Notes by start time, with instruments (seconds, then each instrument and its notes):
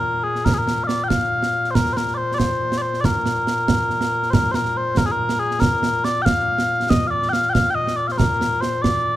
Already playing: bagpipes A#2 A#4
0.24 bagpipes G#4
0.35 snare
0.45 bagpipes A#4, concert bass drum, snare
0.54 bagpipes G#4
0.58 bagpipes A#4
0.68 snare
0.84 bagpipes D5 F5
0.89 snare
1.04 bagpipes G5
1.08 bagpipes F5, concert bass drum, snare
1.43 snare
1.64 snare
1.71 bagpipes C5
1.75 bagpipes A#4, concert bass drum, snare
1.86 snare
1.93 bagpipes A#4 C5, snare
2.08 snare
2.14 bagpipes C5 D5
2.35 bagpipes D5
2.39 bagpipes C5, concert bass drum, snare
2.72 snare
2.78 bagpipes D5
2.82 bagpipes C5
2.94 snare
3.01 bagpipes D5, concert bass drum, snare
3.05 bagpipes A#4
3.26 snare
3.47 snare
3.68 concert bass drum, snare
3.90 snare
4.01 snare
4.23 snare
4.30 bagpipes A#4 C5, concert bass drum, snare
4.44 snare
4.51 bagpipes A#4 C5, snare
4.65 snare
4.77 bagpipes C5
4.97 bagpipes A#4, concert bass drum, snare
5.06 bagpipes G#4
5.12 bagpipes A#4
5.29 snare
5.39 bagpipes G#4
5.51 snare
5.60 bagpipes A#4, concert bass drum, snare
5.83 snare
6.04 bagpipes D5, snare
6.22 bagpipes F5 G5
6.26 concert bass drum, snare
6.59 snare
6.80 snare
6.89 bagpipes D#5, concert bass drum, snare
7.07 bagpipes D5 F5
7.23 snare
7.29 bagpipes F5 G5
7.33 snare
7.50 bagpipes F5 G5
7.55 concert bass drum, snare
7.70 bagpipes G5
7.75 bagpipes D#5
7.87 snare
7.97 bagpipes D5
8.07 bagpipes F5, snare
8.12 bagpipes C5
8.18 bagpipes A#4, concert bass drum, snare
8.41 snare
8.61 bagpipes C5, snare
8.82 bagpipes D5, concert bass drum, snare